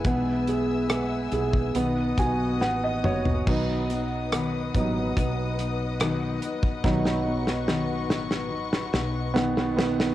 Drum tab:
CC |----------------|x---------------|----------------|
HH |x-x-x-x-x-x-----|--x-x-x-x-x-x-x-|----------------|
SD |----r-------o---|----r-------r---|oo-oo-oo-oo-oooo|
T2 |--------------o-|----------------|----------------|
FT |---------------o|----------------|----------------|
BD |o------o--o-----|o-----o-o------o|o---------------|